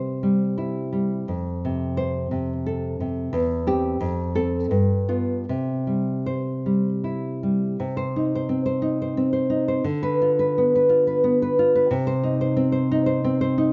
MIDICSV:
0, 0, Header, 1, 2, 480
1, 0, Start_track
1, 0, Key_signature, 0, "major"
1, 0, Tempo, 693642
1, 890, Time_signature, 3, 2, 24, 8
1, 3276, Tempo, 764331
1, 5194, Key_signature, -3, "minor"
1, 5196, Tempo, 687285
1, 7596, Tempo, 675676
1, 9372, End_track
2, 0, Start_track
2, 0, Title_t, "Nylon-string guitar"
2, 0, Program_c, 0, 24
2, 0, Note_on_c, 0, 48, 48
2, 0, Note_on_c, 0, 55, 39
2, 0, Note_on_c, 0, 72, 57
2, 151, Note_off_c, 0, 55, 0
2, 159, Note_on_c, 0, 55, 43
2, 301, Note_off_c, 0, 72, 0
2, 399, Note_on_c, 0, 64, 45
2, 632, Note_off_c, 0, 55, 0
2, 640, Note_on_c, 0, 55, 41
2, 860, Note_off_c, 0, 48, 0
2, 886, Note_off_c, 0, 55, 0
2, 886, Note_on_c, 0, 41, 51
2, 888, Note_off_c, 0, 64, 0
2, 1140, Note_on_c, 0, 48, 44
2, 1365, Note_on_c, 0, 72, 66
2, 1592, Note_off_c, 0, 48, 0
2, 1600, Note_on_c, 0, 48, 48
2, 1745, Note_off_c, 0, 72, 0
2, 1844, Note_on_c, 0, 69, 55
2, 2071, Note_off_c, 0, 48, 0
2, 2080, Note_on_c, 0, 48, 50
2, 2278, Note_off_c, 0, 41, 0
2, 2303, Note_on_c, 0, 40, 67
2, 2309, Note_off_c, 0, 69, 0
2, 2310, Note_off_c, 0, 48, 0
2, 2538, Note_on_c, 0, 60, 50
2, 2542, Note_on_c, 0, 67, 72
2, 2755, Note_off_c, 0, 60, 0
2, 2758, Note_off_c, 0, 67, 0
2, 2765, Note_off_c, 0, 40, 0
2, 2772, Note_on_c, 0, 41, 63
2, 3011, Note_on_c, 0, 60, 48
2, 3014, Note_on_c, 0, 69, 67
2, 3241, Note_off_c, 0, 60, 0
2, 3242, Note_off_c, 0, 69, 0
2, 3254, Note_off_c, 0, 41, 0
2, 3258, Note_on_c, 0, 43, 63
2, 3496, Note_on_c, 0, 59, 41
2, 3498, Note_on_c, 0, 65, 56
2, 3714, Note_off_c, 0, 59, 0
2, 3714, Note_off_c, 0, 65, 0
2, 3721, Note_off_c, 0, 43, 0
2, 3752, Note_on_c, 0, 48, 52
2, 3990, Note_on_c, 0, 55, 39
2, 4237, Note_on_c, 0, 72, 52
2, 4477, Note_off_c, 0, 55, 0
2, 4485, Note_on_c, 0, 55, 39
2, 4627, Note_off_c, 0, 72, 0
2, 4724, Note_on_c, 0, 64, 38
2, 4962, Note_off_c, 0, 55, 0
2, 4970, Note_on_c, 0, 55, 33
2, 5174, Note_off_c, 0, 48, 0
2, 5195, Note_off_c, 0, 64, 0
2, 5197, Note_off_c, 0, 55, 0
2, 5200, Note_on_c, 0, 48, 61
2, 5320, Note_on_c, 0, 72, 57
2, 5455, Note_on_c, 0, 63, 48
2, 5511, Note_off_c, 0, 72, 0
2, 5589, Note_on_c, 0, 72, 51
2, 5685, Note_on_c, 0, 60, 50
2, 5792, Note_off_c, 0, 72, 0
2, 5801, Note_on_c, 0, 72, 52
2, 5905, Note_off_c, 0, 63, 0
2, 5914, Note_on_c, 0, 63, 54
2, 6043, Note_off_c, 0, 72, 0
2, 6052, Note_on_c, 0, 72, 50
2, 6152, Note_off_c, 0, 60, 0
2, 6161, Note_on_c, 0, 60, 56
2, 6260, Note_off_c, 0, 72, 0
2, 6269, Note_on_c, 0, 72, 47
2, 6379, Note_off_c, 0, 63, 0
2, 6388, Note_on_c, 0, 63, 56
2, 6508, Note_off_c, 0, 72, 0
2, 6516, Note_on_c, 0, 72, 51
2, 6598, Note_off_c, 0, 48, 0
2, 6625, Note_off_c, 0, 63, 0
2, 6629, Note_on_c, 0, 50, 64
2, 6630, Note_off_c, 0, 72, 0
2, 6631, Note_off_c, 0, 60, 0
2, 6757, Note_on_c, 0, 71, 63
2, 6890, Note_on_c, 0, 65, 53
2, 6949, Note_off_c, 0, 71, 0
2, 7012, Note_on_c, 0, 71, 52
2, 7142, Note_on_c, 0, 59, 53
2, 7257, Note_off_c, 0, 71, 0
2, 7265, Note_on_c, 0, 71, 51
2, 7354, Note_off_c, 0, 65, 0
2, 7363, Note_on_c, 0, 65, 60
2, 7478, Note_off_c, 0, 71, 0
2, 7487, Note_on_c, 0, 71, 52
2, 7595, Note_off_c, 0, 59, 0
2, 7604, Note_on_c, 0, 59, 58
2, 7726, Note_off_c, 0, 71, 0
2, 7734, Note_on_c, 0, 71, 56
2, 7844, Note_off_c, 0, 65, 0
2, 7853, Note_on_c, 0, 65, 59
2, 7962, Note_off_c, 0, 71, 0
2, 7970, Note_on_c, 0, 71, 59
2, 8052, Note_off_c, 0, 50, 0
2, 8078, Note_on_c, 0, 48, 73
2, 8082, Note_off_c, 0, 59, 0
2, 8084, Note_off_c, 0, 71, 0
2, 8086, Note_off_c, 0, 65, 0
2, 8193, Note_on_c, 0, 72, 71
2, 8311, Note_on_c, 0, 63, 59
2, 8384, Note_off_c, 0, 72, 0
2, 8435, Note_on_c, 0, 72, 59
2, 8546, Note_on_c, 0, 60, 61
2, 8649, Note_off_c, 0, 72, 0
2, 8657, Note_on_c, 0, 72, 60
2, 8786, Note_off_c, 0, 63, 0
2, 8794, Note_on_c, 0, 63, 65
2, 8891, Note_off_c, 0, 72, 0
2, 8899, Note_on_c, 0, 72, 63
2, 9020, Note_off_c, 0, 60, 0
2, 9029, Note_on_c, 0, 60, 67
2, 9138, Note_off_c, 0, 72, 0
2, 9146, Note_on_c, 0, 72, 63
2, 9257, Note_off_c, 0, 63, 0
2, 9265, Note_on_c, 0, 63, 68
2, 9372, Note_off_c, 0, 48, 0
2, 9372, Note_off_c, 0, 60, 0
2, 9372, Note_off_c, 0, 63, 0
2, 9372, Note_off_c, 0, 72, 0
2, 9372, End_track
0, 0, End_of_file